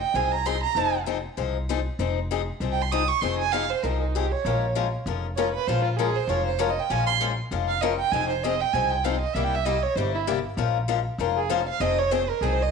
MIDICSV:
0, 0, Header, 1, 4, 480
1, 0, Start_track
1, 0, Key_signature, -4, "minor"
1, 0, Tempo, 306905
1, 1184, Time_signature, 4, 2, 24, 8
1, 19882, End_track
2, 0, Start_track
2, 0, Title_t, "Violin"
2, 0, Program_c, 0, 40
2, 21, Note_on_c, 0, 79, 89
2, 240, Note_on_c, 0, 80, 76
2, 264, Note_off_c, 0, 79, 0
2, 493, Note_on_c, 0, 82, 89
2, 516, Note_off_c, 0, 80, 0
2, 718, Note_on_c, 0, 84, 84
2, 741, Note_off_c, 0, 82, 0
2, 977, Note_off_c, 0, 84, 0
2, 987, Note_on_c, 0, 82, 90
2, 1432, Note_off_c, 0, 82, 0
2, 4249, Note_on_c, 0, 79, 86
2, 4407, Note_on_c, 0, 84, 76
2, 4430, Note_off_c, 0, 79, 0
2, 4557, Note_on_c, 0, 87, 99
2, 4580, Note_off_c, 0, 84, 0
2, 4813, Note_on_c, 0, 85, 99
2, 4837, Note_off_c, 0, 87, 0
2, 5021, Note_on_c, 0, 84, 86
2, 5044, Note_off_c, 0, 85, 0
2, 5289, Note_off_c, 0, 84, 0
2, 5299, Note_on_c, 0, 80, 102
2, 5502, Note_on_c, 0, 77, 96
2, 5525, Note_off_c, 0, 80, 0
2, 5779, Note_on_c, 0, 72, 87
2, 5802, Note_off_c, 0, 77, 0
2, 5986, Note_on_c, 0, 70, 71
2, 6010, Note_off_c, 0, 72, 0
2, 6268, Note_off_c, 0, 70, 0
2, 6284, Note_on_c, 0, 63, 46
2, 6491, Note_on_c, 0, 67, 70
2, 6514, Note_off_c, 0, 63, 0
2, 6752, Note_on_c, 0, 73, 81
2, 6775, Note_off_c, 0, 67, 0
2, 7435, Note_off_c, 0, 73, 0
2, 8387, Note_on_c, 0, 73, 71
2, 8648, Note_off_c, 0, 73, 0
2, 8659, Note_on_c, 0, 71, 94
2, 8866, Note_on_c, 0, 72, 103
2, 8889, Note_off_c, 0, 71, 0
2, 9127, Note_off_c, 0, 72, 0
2, 9137, Note_on_c, 0, 65, 50
2, 9332, Note_on_c, 0, 68, 87
2, 9355, Note_off_c, 0, 65, 0
2, 9626, Note_on_c, 0, 72, 80
2, 9649, Note_off_c, 0, 68, 0
2, 9830, Note_on_c, 0, 73, 85
2, 9853, Note_off_c, 0, 72, 0
2, 10098, Note_off_c, 0, 73, 0
2, 10107, Note_on_c, 0, 72, 76
2, 10317, Note_on_c, 0, 73, 78
2, 10340, Note_off_c, 0, 72, 0
2, 10475, Note_on_c, 0, 75, 78
2, 10499, Note_off_c, 0, 73, 0
2, 10629, Note_on_c, 0, 79, 83
2, 10652, Note_off_c, 0, 75, 0
2, 10801, Note_on_c, 0, 80, 98
2, 10825, Note_off_c, 0, 79, 0
2, 11041, Note_off_c, 0, 80, 0
2, 11050, Note_on_c, 0, 84, 109
2, 11177, Note_off_c, 0, 84, 0
2, 12012, Note_on_c, 0, 77, 89
2, 12214, Note_on_c, 0, 75, 79
2, 12238, Note_off_c, 0, 77, 0
2, 12485, Note_off_c, 0, 75, 0
2, 12495, Note_on_c, 0, 79, 92
2, 12687, Note_on_c, 0, 80, 103
2, 12710, Note_off_c, 0, 79, 0
2, 12966, Note_off_c, 0, 80, 0
2, 12975, Note_on_c, 0, 72, 76
2, 13187, Note_on_c, 0, 75, 90
2, 13211, Note_off_c, 0, 72, 0
2, 13458, Note_on_c, 0, 79, 94
2, 13481, Note_off_c, 0, 75, 0
2, 13646, Note_on_c, 0, 80, 89
2, 13670, Note_off_c, 0, 79, 0
2, 13922, Note_on_c, 0, 79, 84
2, 13945, Note_off_c, 0, 80, 0
2, 14138, Note_on_c, 0, 77, 74
2, 14161, Note_off_c, 0, 79, 0
2, 14393, Note_off_c, 0, 77, 0
2, 14402, Note_on_c, 0, 75, 85
2, 14596, Note_on_c, 0, 76, 79
2, 14619, Note_off_c, 0, 75, 0
2, 14751, Note_on_c, 0, 79, 90
2, 14775, Note_off_c, 0, 76, 0
2, 14934, Note_on_c, 0, 76, 90
2, 14957, Note_off_c, 0, 79, 0
2, 15092, Note_on_c, 0, 75, 89
2, 15116, Note_off_c, 0, 76, 0
2, 15368, Note_on_c, 0, 73, 83
2, 15391, Note_off_c, 0, 75, 0
2, 15567, Note_on_c, 0, 72, 75
2, 15590, Note_off_c, 0, 73, 0
2, 15851, Note_off_c, 0, 72, 0
2, 15866, Note_on_c, 0, 64, 73
2, 15986, Note_off_c, 0, 64, 0
2, 17775, Note_on_c, 0, 68, 79
2, 17978, Note_on_c, 0, 72, 80
2, 18001, Note_off_c, 0, 68, 0
2, 18256, Note_off_c, 0, 72, 0
2, 18277, Note_on_c, 0, 77, 106
2, 18464, Note_on_c, 0, 75, 97
2, 18488, Note_off_c, 0, 77, 0
2, 18742, Note_on_c, 0, 73, 98
2, 18765, Note_off_c, 0, 75, 0
2, 18945, Note_on_c, 0, 72, 93
2, 18968, Note_off_c, 0, 73, 0
2, 19220, Note_on_c, 0, 70, 88
2, 19244, Note_off_c, 0, 72, 0
2, 19424, Note_on_c, 0, 68, 80
2, 19447, Note_off_c, 0, 70, 0
2, 19590, Note_on_c, 0, 72, 90
2, 19614, Note_off_c, 0, 68, 0
2, 19742, Note_on_c, 0, 75, 88
2, 19766, Note_off_c, 0, 72, 0
2, 19882, Note_off_c, 0, 75, 0
2, 19882, End_track
3, 0, Start_track
3, 0, Title_t, "Steel-string acoustic guitar"
3, 0, Program_c, 1, 25
3, 232, Note_on_c, 1, 53, 60
3, 238, Note_on_c, 1, 60, 65
3, 241, Note_on_c, 1, 63, 72
3, 250, Note_on_c, 1, 68, 66
3, 525, Note_off_c, 1, 53, 0
3, 528, Note_off_c, 1, 60, 0
3, 530, Note_off_c, 1, 63, 0
3, 534, Note_off_c, 1, 68, 0
3, 713, Note_on_c, 1, 53, 85
3, 716, Note_on_c, 1, 60, 90
3, 722, Note_on_c, 1, 63, 95
3, 731, Note_on_c, 1, 68, 99
3, 870, Note_off_c, 1, 53, 0
3, 871, Note_off_c, 1, 60, 0
3, 874, Note_off_c, 1, 63, 0
3, 879, Note_off_c, 1, 68, 0
3, 1193, Note_on_c, 1, 53, 66
3, 1202, Note_on_c, 1, 60, 73
3, 1202, Note_on_c, 1, 63, 70
3, 1208, Note_on_c, 1, 68, 77
3, 1488, Note_off_c, 1, 53, 0
3, 1493, Note_off_c, 1, 60, 0
3, 1493, Note_off_c, 1, 63, 0
3, 1495, Note_off_c, 1, 68, 0
3, 1664, Note_on_c, 1, 53, 82
3, 1676, Note_on_c, 1, 60, 87
3, 1677, Note_on_c, 1, 63, 89
3, 1677, Note_on_c, 1, 68, 90
3, 1828, Note_off_c, 1, 53, 0
3, 1834, Note_off_c, 1, 60, 0
3, 1834, Note_off_c, 1, 63, 0
3, 1834, Note_off_c, 1, 68, 0
3, 2145, Note_on_c, 1, 53, 67
3, 2154, Note_on_c, 1, 60, 65
3, 2157, Note_on_c, 1, 68, 76
3, 2160, Note_on_c, 1, 63, 70
3, 2446, Note_off_c, 1, 53, 0
3, 2450, Note_off_c, 1, 60, 0
3, 2452, Note_off_c, 1, 68, 0
3, 2453, Note_off_c, 1, 63, 0
3, 2645, Note_on_c, 1, 53, 90
3, 2650, Note_on_c, 1, 60, 94
3, 2656, Note_on_c, 1, 63, 101
3, 2662, Note_on_c, 1, 68, 118
3, 2800, Note_off_c, 1, 53, 0
3, 2803, Note_off_c, 1, 60, 0
3, 2805, Note_off_c, 1, 63, 0
3, 2808, Note_off_c, 1, 68, 0
3, 3115, Note_on_c, 1, 53, 64
3, 3118, Note_on_c, 1, 60, 84
3, 3125, Note_on_c, 1, 63, 76
3, 3133, Note_on_c, 1, 68, 81
3, 3412, Note_off_c, 1, 53, 0
3, 3414, Note_off_c, 1, 60, 0
3, 3417, Note_off_c, 1, 63, 0
3, 3421, Note_off_c, 1, 68, 0
3, 3609, Note_on_c, 1, 53, 71
3, 3610, Note_on_c, 1, 60, 86
3, 3616, Note_on_c, 1, 63, 99
3, 3626, Note_on_c, 1, 68, 100
3, 3763, Note_off_c, 1, 53, 0
3, 3764, Note_off_c, 1, 60, 0
3, 3767, Note_off_c, 1, 63, 0
3, 3772, Note_off_c, 1, 68, 0
3, 4077, Note_on_c, 1, 53, 64
3, 4087, Note_on_c, 1, 60, 64
3, 4091, Note_on_c, 1, 63, 72
3, 4098, Note_on_c, 1, 68, 71
3, 4374, Note_off_c, 1, 53, 0
3, 4379, Note_off_c, 1, 60, 0
3, 4381, Note_off_c, 1, 63, 0
3, 4385, Note_off_c, 1, 68, 0
3, 4569, Note_on_c, 1, 53, 99
3, 4569, Note_on_c, 1, 60, 97
3, 4578, Note_on_c, 1, 63, 96
3, 4586, Note_on_c, 1, 68, 100
3, 4724, Note_off_c, 1, 53, 0
3, 4724, Note_off_c, 1, 60, 0
3, 4729, Note_off_c, 1, 63, 0
3, 4733, Note_off_c, 1, 68, 0
3, 5039, Note_on_c, 1, 53, 78
3, 5046, Note_on_c, 1, 60, 75
3, 5049, Note_on_c, 1, 63, 75
3, 5058, Note_on_c, 1, 68, 75
3, 5336, Note_off_c, 1, 53, 0
3, 5339, Note_off_c, 1, 60, 0
3, 5341, Note_off_c, 1, 63, 0
3, 5345, Note_off_c, 1, 68, 0
3, 5517, Note_on_c, 1, 53, 88
3, 5524, Note_on_c, 1, 60, 84
3, 5536, Note_on_c, 1, 63, 91
3, 5538, Note_on_c, 1, 68, 97
3, 5679, Note_off_c, 1, 53, 0
3, 5682, Note_off_c, 1, 60, 0
3, 5688, Note_off_c, 1, 63, 0
3, 5689, Note_off_c, 1, 68, 0
3, 5999, Note_on_c, 1, 53, 69
3, 6004, Note_on_c, 1, 60, 60
3, 6010, Note_on_c, 1, 63, 69
3, 6019, Note_on_c, 1, 68, 71
3, 6296, Note_off_c, 1, 53, 0
3, 6298, Note_off_c, 1, 60, 0
3, 6301, Note_off_c, 1, 63, 0
3, 6306, Note_off_c, 1, 68, 0
3, 6491, Note_on_c, 1, 53, 91
3, 6499, Note_on_c, 1, 63, 86
3, 6503, Note_on_c, 1, 60, 88
3, 6503, Note_on_c, 1, 68, 96
3, 6646, Note_off_c, 1, 53, 0
3, 6650, Note_off_c, 1, 63, 0
3, 6651, Note_off_c, 1, 60, 0
3, 6652, Note_off_c, 1, 68, 0
3, 6971, Note_on_c, 1, 53, 69
3, 6975, Note_on_c, 1, 56, 66
3, 6980, Note_on_c, 1, 61, 79
3, 6985, Note_on_c, 1, 65, 81
3, 6987, Note_on_c, 1, 70, 74
3, 7261, Note_off_c, 1, 53, 0
3, 7263, Note_off_c, 1, 56, 0
3, 7266, Note_off_c, 1, 61, 0
3, 7268, Note_off_c, 1, 65, 0
3, 7270, Note_off_c, 1, 70, 0
3, 7434, Note_on_c, 1, 53, 80
3, 7440, Note_on_c, 1, 61, 87
3, 7441, Note_on_c, 1, 56, 89
3, 7447, Note_on_c, 1, 65, 87
3, 7448, Note_on_c, 1, 70, 95
3, 7597, Note_off_c, 1, 53, 0
3, 7600, Note_off_c, 1, 56, 0
3, 7600, Note_off_c, 1, 61, 0
3, 7603, Note_off_c, 1, 65, 0
3, 7604, Note_off_c, 1, 70, 0
3, 7924, Note_on_c, 1, 53, 66
3, 7929, Note_on_c, 1, 56, 65
3, 7931, Note_on_c, 1, 61, 68
3, 7936, Note_on_c, 1, 65, 69
3, 7937, Note_on_c, 1, 70, 64
3, 8218, Note_off_c, 1, 53, 0
3, 8220, Note_off_c, 1, 56, 0
3, 8221, Note_off_c, 1, 61, 0
3, 8223, Note_off_c, 1, 65, 0
3, 8224, Note_off_c, 1, 70, 0
3, 8405, Note_on_c, 1, 53, 95
3, 8406, Note_on_c, 1, 56, 92
3, 8412, Note_on_c, 1, 61, 96
3, 8417, Note_on_c, 1, 70, 104
3, 8420, Note_on_c, 1, 65, 100
3, 8561, Note_off_c, 1, 53, 0
3, 8562, Note_off_c, 1, 56, 0
3, 8565, Note_off_c, 1, 61, 0
3, 8568, Note_off_c, 1, 70, 0
3, 8569, Note_off_c, 1, 65, 0
3, 8888, Note_on_c, 1, 53, 75
3, 8893, Note_on_c, 1, 56, 73
3, 8898, Note_on_c, 1, 65, 77
3, 8901, Note_on_c, 1, 61, 72
3, 8901, Note_on_c, 1, 70, 77
3, 9179, Note_off_c, 1, 53, 0
3, 9181, Note_off_c, 1, 56, 0
3, 9184, Note_off_c, 1, 65, 0
3, 9185, Note_off_c, 1, 61, 0
3, 9185, Note_off_c, 1, 70, 0
3, 9362, Note_on_c, 1, 53, 97
3, 9369, Note_on_c, 1, 56, 86
3, 9373, Note_on_c, 1, 61, 93
3, 9375, Note_on_c, 1, 65, 96
3, 9382, Note_on_c, 1, 70, 89
3, 9519, Note_off_c, 1, 53, 0
3, 9523, Note_off_c, 1, 56, 0
3, 9525, Note_off_c, 1, 61, 0
3, 9526, Note_off_c, 1, 65, 0
3, 9529, Note_off_c, 1, 70, 0
3, 9834, Note_on_c, 1, 53, 65
3, 9837, Note_on_c, 1, 56, 69
3, 9843, Note_on_c, 1, 61, 69
3, 9845, Note_on_c, 1, 65, 70
3, 9853, Note_on_c, 1, 70, 75
3, 10131, Note_off_c, 1, 53, 0
3, 10132, Note_off_c, 1, 56, 0
3, 10135, Note_off_c, 1, 61, 0
3, 10136, Note_off_c, 1, 65, 0
3, 10140, Note_off_c, 1, 70, 0
3, 10301, Note_on_c, 1, 53, 102
3, 10308, Note_on_c, 1, 56, 101
3, 10311, Note_on_c, 1, 61, 95
3, 10315, Note_on_c, 1, 65, 102
3, 10323, Note_on_c, 1, 70, 104
3, 10468, Note_off_c, 1, 53, 0
3, 10471, Note_off_c, 1, 56, 0
3, 10473, Note_off_c, 1, 61, 0
3, 10475, Note_off_c, 1, 65, 0
3, 10479, Note_off_c, 1, 70, 0
3, 10794, Note_on_c, 1, 53, 75
3, 10798, Note_on_c, 1, 56, 77
3, 10803, Note_on_c, 1, 61, 79
3, 10807, Note_on_c, 1, 65, 79
3, 10812, Note_on_c, 1, 70, 78
3, 11090, Note_off_c, 1, 53, 0
3, 11092, Note_off_c, 1, 56, 0
3, 11094, Note_off_c, 1, 61, 0
3, 11096, Note_off_c, 1, 65, 0
3, 11099, Note_off_c, 1, 70, 0
3, 11267, Note_on_c, 1, 53, 88
3, 11273, Note_on_c, 1, 56, 96
3, 11282, Note_on_c, 1, 61, 93
3, 11282, Note_on_c, 1, 65, 98
3, 11286, Note_on_c, 1, 70, 86
3, 11430, Note_off_c, 1, 53, 0
3, 11433, Note_off_c, 1, 56, 0
3, 11437, Note_off_c, 1, 61, 0
3, 11438, Note_off_c, 1, 65, 0
3, 11440, Note_off_c, 1, 70, 0
3, 11753, Note_on_c, 1, 53, 72
3, 11763, Note_on_c, 1, 56, 65
3, 11763, Note_on_c, 1, 61, 69
3, 11765, Note_on_c, 1, 65, 73
3, 11770, Note_on_c, 1, 70, 71
3, 12048, Note_off_c, 1, 53, 0
3, 12053, Note_off_c, 1, 56, 0
3, 12054, Note_off_c, 1, 61, 0
3, 12054, Note_off_c, 1, 65, 0
3, 12057, Note_off_c, 1, 70, 0
3, 12234, Note_on_c, 1, 53, 93
3, 12240, Note_on_c, 1, 56, 89
3, 12241, Note_on_c, 1, 61, 101
3, 12244, Note_on_c, 1, 65, 97
3, 12248, Note_on_c, 1, 70, 98
3, 12393, Note_off_c, 1, 53, 0
3, 12395, Note_off_c, 1, 56, 0
3, 12396, Note_off_c, 1, 61, 0
3, 12398, Note_off_c, 1, 65, 0
3, 12400, Note_off_c, 1, 70, 0
3, 12714, Note_on_c, 1, 53, 73
3, 12721, Note_on_c, 1, 60, 75
3, 12725, Note_on_c, 1, 63, 79
3, 12730, Note_on_c, 1, 68, 72
3, 13008, Note_off_c, 1, 53, 0
3, 13012, Note_off_c, 1, 60, 0
3, 13014, Note_off_c, 1, 63, 0
3, 13016, Note_off_c, 1, 68, 0
3, 13199, Note_on_c, 1, 53, 79
3, 13206, Note_on_c, 1, 60, 96
3, 13211, Note_on_c, 1, 63, 80
3, 13216, Note_on_c, 1, 68, 94
3, 13354, Note_off_c, 1, 53, 0
3, 13358, Note_off_c, 1, 60, 0
3, 13360, Note_off_c, 1, 63, 0
3, 13363, Note_off_c, 1, 68, 0
3, 13674, Note_on_c, 1, 53, 69
3, 13683, Note_on_c, 1, 60, 70
3, 13687, Note_on_c, 1, 68, 69
3, 13688, Note_on_c, 1, 63, 68
3, 13968, Note_off_c, 1, 53, 0
3, 13972, Note_off_c, 1, 60, 0
3, 13974, Note_off_c, 1, 68, 0
3, 13975, Note_off_c, 1, 63, 0
3, 14145, Note_on_c, 1, 53, 95
3, 14152, Note_on_c, 1, 60, 98
3, 14155, Note_on_c, 1, 63, 102
3, 14166, Note_on_c, 1, 68, 90
3, 14307, Note_off_c, 1, 53, 0
3, 14310, Note_off_c, 1, 60, 0
3, 14312, Note_off_c, 1, 63, 0
3, 14317, Note_off_c, 1, 68, 0
3, 14631, Note_on_c, 1, 48, 71
3, 14636, Note_on_c, 1, 55, 72
3, 14637, Note_on_c, 1, 58, 70
3, 14644, Note_on_c, 1, 64, 80
3, 14647, Note_on_c, 1, 67, 88
3, 14926, Note_off_c, 1, 48, 0
3, 14928, Note_off_c, 1, 55, 0
3, 14929, Note_off_c, 1, 58, 0
3, 14932, Note_off_c, 1, 64, 0
3, 14934, Note_off_c, 1, 67, 0
3, 15099, Note_on_c, 1, 48, 76
3, 15104, Note_on_c, 1, 55, 88
3, 15110, Note_on_c, 1, 58, 93
3, 15112, Note_on_c, 1, 64, 95
3, 15118, Note_on_c, 1, 67, 81
3, 15263, Note_off_c, 1, 48, 0
3, 15266, Note_off_c, 1, 55, 0
3, 15269, Note_off_c, 1, 58, 0
3, 15270, Note_off_c, 1, 64, 0
3, 15273, Note_off_c, 1, 67, 0
3, 15594, Note_on_c, 1, 48, 69
3, 15597, Note_on_c, 1, 55, 71
3, 15599, Note_on_c, 1, 58, 65
3, 15602, Note_on_c, 1, 64, 80
3, 15609, Note_on_c, 1, 67, 85
3, 15887, Note_off_c, 1, 48, 0
3, 15888, Note_off_c, 1, 55, 0
3, 15889, Note_off_c, 1, 58, 0
3, 15891, Note_off_c, 1, 64, 0
3, 15894, Note_off_c, 1, 67, 0
3, 16068, Note_on_c, 1, 48, 104
3, 16068, Note_on_c, 1, 55, 103
3, 16075, Note_on_c, 1, 58, 110
3, 16076, Note_on_c, 1, 64, 103
3, 16076, Note_on_c, 1, 67, 114
3, 16227, Note_off_c, 1, 48, 0
3, 16227, Note_off_c, 1, 55, 0
3, 16231, Note_off_c, 1, 58, 0
3, 16231, Note_off_c, 1, 64, 0
3, 16231, Note_off_c, 1, 67, 0
3, 16540, Note_on_c, 1, 53, 77
3, 16548, Note_on_c, 1, 56, 69
3, 16552, Note_on_c, 1, 61, 85
3, 16553, Note_on_c, 1, 65, 81
3, 16559, Note_on_c, 1, 70, 90
3, 16839, Note_off_c, 1, 53, 0
3, 16843, Note_off_c, 1, 56, 0
3, 16845, Note_off_c, 1, 61, 0
3, 16845, Note_off_c, 1, 65, 0
3, 16849, Note_off_c, 1, 70, 0
3, 17016, Note_on_c, 1, 53, 88
3, 17017, Note_on_c, 1, 56, 82
3, 17026, Note_on_c, 1, 61, 91
3, 17028, Note_on_c, 1, 65, 92
3, 17028, Note_on_c, 1, 70, 85
3, 17181, Note_off_c, 1, 53, 0
3, 17181, Note_off_c, 1, 56, 0
3, 17186, Note_off_c, 1, 61, 0
3, 17187, Note_off_c, 1, 65, 0
3, 17187, Note_off_c, 1, 70, 0
3, 17507, Note_on_c, 1, 53, 72
3, 17515, Note_on_c, 1, 56, 66
3, 17516, Note_on_c, 1, 65, 77
3, 17518, Note_on_c, 1, 61, 77
3, 17527, Note_on_c, 1, 70, 80
3, 17802, Note_off_c, 1, 53, 0
3, 17806, Note_off_c, 1, 56, 0
3, 17807, Note_off_c, 1, 61, 0
3, 17807, Note_off_c, 1, 65, 0
3, 17812, Note_off_c, 1, 70, 0
3, 17979, Note_on_c, 1, 53, 97
3, 17989, Note_on_c, 1, 56, 111
3, 17989, Note_on_c, 1, 65, 106
3, 17991, Note_on_c, 1, 61, 106
3, 17995, Note_on_c, 1, 70, 109
3, 18142, Note_off_c, 1, 53, 0
3, 18147, Note_off_c, 1, 56, 0
3, 18147, Note_off_c, 1, 65, 0
3, 18148, Note_off_c, 1, 61, 0
3, 18150, Note_off_c, 1, 70, 0
3, 18457, Note_on_c, 1, 53, 66
3, 18462, Note_on_c, 1, 60, 85
3, 18469, Note_on_c, 1, 63, 87
3, 18473, Note_on_c, 1, 68, 84
3, 18757, Note_off_c, 1, 53, 0
3, 18760, Note_off_c, 1, 60, 0
3, 18763, Note_off_c, 1, 63, 0
3, 18765, Note_off_c, 1, 68, 0
3, 18943, Note_on_c, 1, 53, 81
3, 18947, Note_on_c, 1, 60, 93
3, 18950, Note_on_c, 1, 63, 91
3, 18959, Note_on_c, 1, 68, 105
3, 19104, Note_off_c, 1, 53, 0
3, 19106, Note_off_c, 1, 60, 0
3, 19107, Note_off_c, 1, 63, 0
3, 19112, Note_off_c, 1, 68, 0
3, 19434, Note_on_c, 1, 53, 77
3, 19435, Note_on_c, 1, 60, 72
3, 19446, Note_on_c, 1, 63, 73
3, 19449, Note_on_c, 1, 68, 85
3, 19726, Note_off_c, 1, 53, 0
3, 19726, Note_off_c, 1, 60, 0
3, 19732, Note_off_c, 1, 63, 0
3, 19733, Note_off_c, 1, 68, 0
3, 19882, End_track
4, 0, Start_track
4, 0, Title_t, "Upright bass"
4, 0, Program_c, 2, 32
4, 219, Note_on_c, 2, 36, 86
4, 991, Note_off_c, 2, 36, 0
4, 1174, Note_on_c, 2, 29, 83
4, 1949, Note_off_c, 2, 29, 0
4, 2149, Note_on_c, 2, 36, 80
4, 2919, Note_off_c, 2, 36, 0
4, 3110, Note_on_c, 2, 29, 95
4, 3881, Note_off_c, 2, 29, 0
4, 4070, Note_on_c, 2, 36, 83
4, 4841, Note_off_c, 2, 36, 0
4, 5032, Note_on_c, 2, 29, 87
4, 5802, Note_off_c, 2, 29, 0
4, 5996, Note_on_c, 2, 36, 76
4, 6764, Note_off_c, 2, 36, 0
4, 6955, Note_on_c, 2, 34, 93
4, 7723, Note_off_c, 2, 34, 0
4, 7910, Note_on_c, 2, 29, 88
4, 8679, Note_off_c, 2, 29, 0
4, 8875, Note_on_c, 2, 34, 82
4, 9641, Note_off_c, 2, 34, 0
4, 9813, Note_on_c, 2, 29, 87
4, 10587, Note_off_c, 2, 29, 0
4, 10791, Note_on_c, 2, 34, 89
4, 11558, Note_off_c, 2, 34, 0
4, 11746, Note_on_c, 2, 29, 82
4, 12514, Note_off_c, 2, 29, 0
4, 12697, Note_on_c, 2, 29, 89
4, 13468, Note_off_c, 2, 29, 0
4, 13660, Note_on_c, 2, 36, 89
4, 14429, Note_off_c, 2, 36, 0
4, 14618, Note_on_c, 2, 36, 91
4, 15388, Note_off_c, 2, 36, 0
4, 15571, Note_on_c, 2, 31, 88
4, 16343, Note_off_c, 2, 31, 0
4, 16531, Note_on_c, 2, 34, 87
4, 17303, Note_off_c, 2, 34, 0
4, 17491, Note_on_c, 2, 29, 92
4, 18263, Note_off_c, 2, 29, 0
4, 18457, Note_on_c, 2, 29, 86
4, 19226, Note_off_c, 2, 29, 0
4, 19407, Note_on_c, 2, 36, 92
4, 19882, Note_off_c, 2, 36, 0
4, 19882, End_track
0, 0, End_of_file